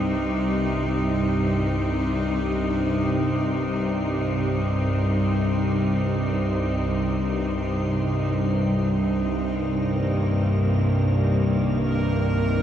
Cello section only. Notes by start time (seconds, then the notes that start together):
Already playing: C3 G3 C4 D#4
8.70 C2
9.90 D#3
9.98 A#3
11.88 A#4